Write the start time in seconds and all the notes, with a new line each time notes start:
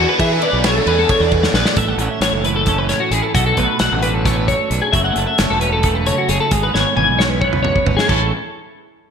Already playing: E3
0.00 B3 D4 G#4
0.09 B4
0.19 E3 B3 D4 G#4 E5, kick, ride
0.32 A4
0.42 B4 D5, ride
0.53 B1
0.64 A4 C#5, snare, ride
0.86 E2 E3 B3 D4 G#4 B4, ride
0.99 A4
1.09 C#5, kick, ride
1.20 E2 D5
1.32 B4, kick, ride
1.43 C#5, snare
1.54 A#1 E3 B3 D4 G#4 B4, snare
1.65 D5, snare
1.76 A1 A2 A4 E5, kick, closed hi-hat
1.89 F#5
1.98 A1 C#4, closed hi-hat
2.11 E5
2.21 A1 E3 C#5, snare, closed hi-hat
2.31 F#1 A4
2.44 E4 B4, closed hi-hat
2.56 A4
2.66 C#4, kick, snare, closed hi-hat
2.78 B4
2.89 A2 C#5, snare, closed hi-hat
3.00 F#4
3.11 A1 E4 G#4, closed hi-hat
3.22 A4
3.35 B1 B2 F#4 A4, kick, closed hi-hat
3.46 A4
3.57 B1 A3 B4, kick, closed hi-hat
3.79 B1 F#3 F#5, snare, closed hi-hat
3.92 A1
4.02 D4 B4, closed hi-hat
4.14 A4
4.25 A3 C#5, kick, snare, closed hi-hat
4.37 B4
4.48 F#2 C#5, kick, closed hi-hat
4.70 B1 D4 B4, closed hi-hat
4.82 G#4
4.93 F#1 F#2 F#4 E5, kick, closed hi-hat
5.04 A4 F#5
5.16 F#1 A3, closed hi-hat
5.27 E5
5.38 F#1 F#3 C#5, snare, closed hi-hat
5.50 E1 A4
5.61 C#4 B4, closed hi-hat
5.73 E4 A4
5.83 A3, kick, closed hi-hat
5.95 B4
6.06 C#3 C#5, closed hi-hat
6.18 F#4
6.29 F#1 C#4 G#4, closed hi-hat
6.40 E4 A4
6.51 G#1 G#2 G#4, kick, closed hi-hat
6.63 B4
6.74 G#1 B3 C#5, snare
6.96 G#1 E3 G#5, high tom
7.09 B1
7.19 C#4 C#5, snare
7.30 B4
7.41 B3 C#5, kick
7.52 B4, mid tom
7.63 G#2 C#5, mid tom
7.76 kick
7.86 G#1 C#4 B4, floor tom
7.97 G#4, snare
8.08 A1 A2 E3 C#4 E4 A4, kick, crash
8.12 A4